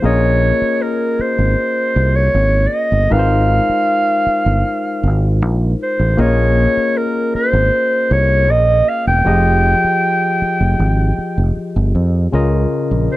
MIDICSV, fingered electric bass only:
0, 0, Header, 1, 3, 480
1, 0, Start_track
1, 0, Tempo, 768246
1, 22, Time_signature, 4, 2, 24, 8
1, 8227, End_track
2, 0, Start_track
2, 0, Title_t, "Fingered electric bass"
2, 0, Program_c, 0, 33
2, 22, Note_on_c, 0, 34, 98
2, 318, Note_off_c, 0, 34, 0
2, 866, Note_on_c, 0, 32, 75
2, 964, Note_off_c, 0, 32, 0
2, 1225, Note_on_c, 0, 36, 80
2, 1422, Note_off_c, 0, 36, 0
2, 1465, Note_on_c, 0, 32, 92
2, 1662, Note_off_c, 0, 32, 0
2, 1823, Note_on_c, 0, 31, 83
2, 1922, Note_off_c, 0, 31, 0
2, 1945, Note_on_c, 0, 32, 93
2, 2240, Note_off_c, 0, 32, 0
2, 2786, Note_on_c, 0, 31, 87
2, 2884, Note_off_c, 0, 31, 0
2, 3145, Note_on_c, 0, 32, 81
2, 3387, Note_off_c, 0, 32, 0
2, 3387, Note_on_c, 0, 34, 87
2, 3583, Note_off_c, 0, 34, 0
2, 3746, Note_on_c, 0, 33, 75
2, 3844, Note_off_c, 0, 33, 0
2, 3864, Note_on_c, 0, 34, 118
2, 4160, Note_off_c, 0, 34, 0
2, 4706, Note_on_c, 0, 32, 93
2, 4805, Note_off_c, 0, 32, 0
2, 5066, Note_on_c, 0, 36, 96
2, 5307, Note_off_c, 0, 36, 0
2, 5307, Note_on_c, 0, 34, 91
2, 5504, Note_off_c, 0, 34, 0
2, 5668, Note_on_c, 0, 28, 80
2, 5766, Note_off_c, 0, 28, 0
2, 5786, Note_on_c, 0, 29, 100
2, 6081, Note_off_c, 0, 29, 0
2, 6626, Note_on_c, 0, 29, 78
2, 6725, Note_off_c, 0, 29, 0
2, 6744, Note_on_c, 0, 32, 87
2, 6942, Note_off_c, 0, 32, 0
2, 7108, Note_on_c, 0, 29, 77
2, 7206, Note_off_c, 0, 29, 0
2, 7348, Note_on_c, 0, 31, 85
2, 7446, Note_off_c, 0, 31, 0
2, 7465, Note_on_c, 0, 41, 95
2, 7663, Note_off_c, 0, 41, 0
2, 7706, Note_on_c, 0, 37, 94
2, 7903, Note_off_c, 0, 37, 0
2, 8067, Note_on_c, 0, 34, 78
2, 8166, Note_off_c, 0, 34, 0
2, 8227, End_track
3, 0, Start_track
3, 0, Title_t, "Muted fingered electric bass strokes"
3, 385, Note_on_c, 9, 29, 49
3, 447, Note_off_c, 9, 29, 0
3, 744, Note_on_c, 9, 29, 45
3, 807, Note_off_c, 9, 29, 0
3, 2307, Note_on_c, 9, 29, 45
3, 2369, Note_off_c, 9, 29, 0
3, 2664, Note_on_c, 9, 29, 45
3, 2727, Note_off_c, 9, 29, 0
3, 4230, Note_on_c, 9, 29, 42
3, 4292, Note_off_c, 9, 29, 0
3, 4590, Note_on_c, 9, 29, 47
3, 4653, Note_off_c, 9, 29, 0
3, 6149, Note_on_c, 9, 29, 45
3, 6212, Note_off_c, 9, 29, 0
3, 6508, Note_on_c, 9, 29, 45
3, 6571, Note_off_c, 9, 29, 0
3, 6987, Note_on_c, 9, 29, 45
3, 7050, Note_off_c, 9, 29, 0
3, 7227, Note_on_c, 9, 29, 42
3, 7289, Note_off_c, 9, 29, 0
3, 8227, End_track
0, 0, End_of_file